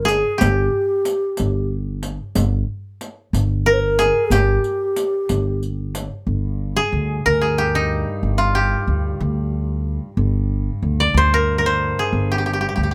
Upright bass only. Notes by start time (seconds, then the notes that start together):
Already playing: G1
0.42 G1
1.40 G1
2.36 G1
3.33 G1
4.30 G1
5.30 G1
6.27 G1
6.92 D2
7.26 D2
8.23 G1
8.87 D2
9.20 D2
10.17 G1
10.83 D2
11.14 D2
12.13 G1
12.77 D2